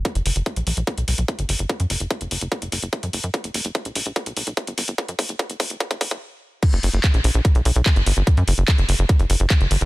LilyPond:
<<
  \new Staff \with { instrumentName = "Analog synth bass" } { \clef bass \time 4/4 \tempo 4 = 146 r16 fis,,16 fis,,16 fis,,16 r16 ais,,16 ais,,16 ais,,16 r16 b,,16 b,,16 b,,16 r16 g,,16 g,,16 g,,16 | r16 fis,16 fis,,16 fis,,16 r16 fis,,16 fis,,16 fis,,16 r16 fis,,16 fis,,16 fis,,16 r16 fis,16 fis,,16 fis,16 | r16 fis,,16 fis,,16 fis,,16 r16 ais,,16 ais,,16 ais,,16 r16 b,,16 b,,16 b,,16 r16 g,,16 g,,16 g,,16 | r16 fis,16 fis,,16 fis,,16 r16 fis,,16 fis,,16 fis,,16 r16 fis,,16 fis,,16 fis,,16 r4 |
r16 fis,,16 fis,,16 fis,,16 r16 ais,,16 ais,,16 ais,,16 r16 b,,16 b,,16 b,,16 r16 g,,16 g,,16 g,,16 | r16 fis,16 fis,,16 fis,,16 r16 fis,,16 fis,,16 fis,,16 r16 fis,,16 fis,,16 fis,,16 r16 fis,,16 g,,16 fis,,16 | }
  \new DrumStaff \with { instrumentName = "Drums" } \drummode { \time 4/4 <hh bd>16 hh16 hho16 hh16 <hh bd>16 hh16 hho16 hh16 <hh bd>16 hh16 hho16 hh16 <hh bd>16 hh16 hho16 hh16 | <hh bd>16 hh16 hho16 hh16 <hh bd>16 hh16 hho16 hh16 <hh bd>16 hh16 hho16 hh16 <hh bd>16 hh16 hho16 hh16 | <hh bd>16 hh16 hho16 hh16 <hh bd>16 hh16 hho16 hh16 <hh bd>16 hh16 hho16 hh16 <hh bd>16 hh16 hho16 hh16 | <hh bd>16 hh16 <hho bd>16 hh16 <hh bd>16 hh16 <hho bd>16 hh16 <hh bd>16 <hh bd>16 <hho bd>16 <hh bd>16 r4 |
<cymc hh bd>16 hh16 hho16 hh16 <hc hh bd>16 hh16 hho16 hh16 <hh bd>16 hh16 hho16 hh16 <hc hh bd>16 hh16 hho16 hh16 | <hh bd>16 hh16 hho16 hh16 <hc hh bd>16 hh16 hho16 hh16 <hh bd>16 hh16 hho16 hh16 <hc hh bd>16 hh16 hho16 hh16 | }
>>